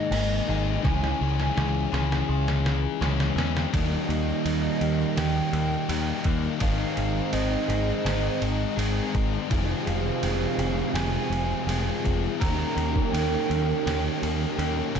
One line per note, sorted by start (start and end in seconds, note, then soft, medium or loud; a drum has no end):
0.00 0.11 D#3 medium
0.00 0.13 G#3 medium
0.00 0.10 A#3 medium
0.00 0.12 A#3 medium
0.00 0.84 A#3 medium
0.00 0.12 D#4 medium
0.00 0.14 D#4 medium
0.00 0.14 G#4 medium
0.00 0.12 A#4 medium
0.00 0.86 D#5 loud
0.11 0.40 G#1 medium
0.11 0.82 D#3 medium
0.11 0.82 G#3 medium
0.11 0.49 A#3 medium
0.11 0.49 D#4 medium
0.11 0.82 A#4 medium
0.11 crash medium
0.15 0.47 G#4 medium
0.47 0.77 G#1 loud
0.47 0.83 A#3 medium
0.47 0.86 D#4 medium
0.47 0.85 D#4 medium
0.47 0.82 G#4 medium
0.83 1.13 C#2 medium
0.83 1.56 C#3 loud
0.83 1.54 E3 medium
0.83 1.56 E3 loud
0.83 1.22 G#3 loud
0.83 1.21 C#4 loud
0.83 1.55 E4 medium
0.83 1.20 G#4 medium
0.83 3.01 G#5 loud
0.83 kick loud
0.83 snare medium
1.04 snare medium
1.21 1.49 C#2 medium
1.21 1.56 G#3 medium
1.21 1.57 C#4 medium
1.21 1.57 G#4 medium
1.40 snare medium
1.56 1.85 C#2 medium
1.56 1.91 E3 medium
1.56 2.29 E3 medium
1.56 1.93 G#3 medium
1.56 1.92 C#4 medium
1.56 1.92 E4 medium
1.56 1.91 G#4 medium
1.56 snare medium
1.92 2.21 C#2 medium
1.92 2.63 E3 medium
1.92 3.00 G#3 medium
1.92 3.01 C#4 medium
1.92 2.28 E4 medium
1.92 3.02 G#4 medium
1.92 snare medium
2.12 snare medium
2.28 2.85 C#2 medium
2.28 3.36 C#3 medium
2.28 3.72 G#3 medium
2.28 2.98 G#3 medium
2.28 2.99 C#4 medium
2.28 3.00 E4 medium
2.28 3.01 G#4 loud
2.48 snare medium
2.64 2.99 E3 medium
2.64 snare medium
3.00 3.29 C#2 medium
3.00 3.72 E3 medium
3.00 3.71 E3 medium
3.00 3.38 G#3 medium
3.00 3.36 C#4 medium
3.00 3.71 E4 medium
3.00 3.35 G#4 medium
3.00 snare medium
3.20 snare medium
3.36 3.64 E2 medium
3.36 3.72 G#3 medium
3.36 3.71 C#4 medium
3.36 3.70 G#4 medium
3.36 snare loud
3.57 snare medium
3.72 3.95 D#2 medium
3.72 4.43 D#3 medium
3.72 5.53 D#3 medium
3.72 4.44 G3 loud
3.72 4.44 A#3 medium
3.72 4.46 D#4 medium
3.72 6.62 G4 medium
3.72 kick loud
3.72 ride medium
4.09 4.31 D#2 medium
4.09 5.52 A#3 medium
4.09 5.18 D#5 medium
4.09 ride medium
4.45 4.67 D#2 medium
4.45 5.15 D#3 medium
4.45 5.16 G3 medium
4.45 5.17 A#3 medium
4.45 5.17 D#4 medium
4.45 5.18 D#4 medium
4.45 ride medium
4.81 5.03 D#2 medium
4.81 5.88 G4 medium
4.81 ride medium
5.16 5.39 D#2 medium
5.16 5.88 D#3 medium
5.16 5.88 G3 medium
5.16 5.89 A#3 loud
5.16 7.33 D#4 medium
5.16 5.90 D#4 medium
5.16 6.25 G5 loud
5.16 snare loud
5.16 ride medium
5.53 5.75 D#2 medium
5.53 6.25 A#3 medium
5.53 ride medium
5.89 6.11 D#2 medium
5.89 6.59 D#3 medium
5.89 6.60 G3 medium
5.89 6.60 A#3 medium
5.89 6.61 D#4 medium
5.89 6.62 G4 medium
5.89 ride loud
6.24 6.47 D#2 medium
6.24 6.62 A#3 medium
6.24 kick medium
6.24 ride medium
6.60 6.83 G#1 medium
6.60 7.69 G#2 loud
6.60 7.32 D#3 loud
6.60 8.42 D#3 medium
6.60 7.34 G#3 medium
6.60 7.35 C4 loud
6.60 7.35 D#4 loud
6.60 9.50 G#4 medium
6.60 7.35 F5 loud
6.60 kick loud
6.60 ride medium
6.97 7.20 G#1 medium
6.97 8.40 G#3 medium
6.97 ride medium
7.33 7.55 G#1 medium
7.33 8.05 D#3 medium
7.33 8.05 G#3 medium
7.33 8.03 C4 medium
7.33 8.06 C4 medium
7.33 8.06 D#4 medium
7.33 8.78 D#5 loud
7.33 ride medium
7.68 7.91 G#1 medium
7.68 8.75 G#4 medium
7.68 snare soft
7.68 ride medium
8.04 8.28 G#1 loud
8.04 9.14 G#2 medium
8.04 8.76 D#3 medium
8.04 8.76 G#3 medium
8.04 9.50 C4 medium
8.04 8.78 C4 medium
8.04 8.79 D#4 loud
8.04 snare loud
8.04 ride medium
8.41 8.64 G#1 medium
8.41 9.13 G#3 medium
8.41 ride medium
8.76 9.00 G#1 medium
8.76 9.48 D#3 medium
8.76 9.48 G#3 medium
8.76 9.49 C4 medium
8.76 9.51 D#4 medium
8.76 9.50 G#4 medium
8.76 ride medium
9.14 9.37 G#1 loud
9.14 9.50 G#3 medium
9.14 kick medium
9.14 ride medium
9.48 9.73 F1 medium
9.48 12.39 F2 medium
9.48 12.39 C3 medium
9.48 11.31 D#3 medium
9.48 10.21 F3 medium
9.48 10.22 G#3 loud
9.48 10.22 C4 medium
9.48 10.23 F4 loud
9.48 12.40 G#4 medium
9.48 kick loud
9.48 ride medium
9.85 10.09 F1 medium
9.85 11.30 G#3 medium
9.85 10.96 F5 medium
9.85 ride medium
10.22 10.45 F1 medium
10.22 10.93 F3 medium
10.22 10.94 G#3 medium
10.22 10.94 C4 medium
10.22 10.96 F4 medium
10.22 ride medium
10.58 10.81 F1 medium
10.58 11.68 G#4 medium
10.58 ride medium
10.94 11.16 F1 medium
10.94 11.66 F3 loud
10.94 11.67 G#3 medium
10.94 11.67 C4 medium
10.94 12.40 C4 medium
10.94 11.68 F4 loud
10.94 12.04 G#5 loud
10.94 snare loud
10.94 ride medium
11.30 11.53 F1 medium
11.30 12.03 G#3 medium
11.30 ride medium
11.67 11.89 F1 medium
11.67 12.38 F3 medium
11.67 12.38 G#3 medium
11.67 12.38 C4 medium
11.67 12.39 F4 medium
11.67 12.41 G#4 medium
11.67 ride medium
12.04 12.27 F1 loud
12.04 12.40 G#3 medium
12.04 kick medium
12.04 ride medium
12.39 12.63 D#2 medium
12.39 13.11 D#3 medium
12.39 14.21 D#3 medium
12.39 13.12 A#3 loud
12.39 13.13 C#4 medium
12.39 13.13 G4 medium
12.39 13.13 A#5 loud
12.39 kick loud
12.39 ride medium
12.77 12.99 D#2 medium
12.77 14.21 A#3 medium
12.77 ride medium
12.96 kick medium
13.12 13.35 D#2 medium
13.12 13.85 D#3 medium
13.12 13.86 A#3 medium
13.12 13.85 C#4 medium
13.12 13.86 C#4 medium
13.12 13.86 G4 medium
13.12 14.57 G5 medium
13.12 ride medium
13.49 13.72 D#2 medium
13.49 14.57 G4 medium
13.49 ride medium
13.86 14.08 D#2 medium
13.86 14.56 D#3 medium
13.86 14.57 A#3 medium
13.86 15.00 C#4 medium
13.86 14.58 C#4 loud
13.86 14.58 G4 loud
13.86 snare loud
13.86 ride medium
14.22 14.44 D#2 medium
14.22 14.93 A#3 medium
14.22 ride medium
14.58 14.80 D#2 medium
14.58 15.00 D#3 medium
14.58 15.00 A#3 medium
14.58 15.00 C#4 medium
14.58 15.00 G4 medium
14.58 ride medium
14.94 15.00 G1 medium
14.94 15.00 A#3 medium
14.94 kick medium
14.94 ride medium